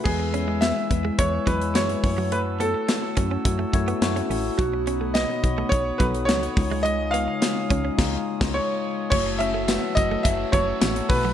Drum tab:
CC |x---------------|----------------|----------------|--------x--x----|
HH |--x-x-x-x-xxxxo-|x-x-x-x-x-xxxxo-|x-x-x-x-x-xxxxo-|x-x-x-x---------|
TB |----------------|----------------|----------------|----------------|
SD |----o-------o---|----o-------o---|----o-------o---|----o---o--o----|
BD |o-----o-o-o---o-|------o-o-o-----|o-----o-o-o---o-|------o-o--o----|

CC |x---------------|
HH |--x-x-x-x-x-xxo-|
TB |----x-------x---|
SD |----o-------o---|
BD |o-----o-o-o---o-|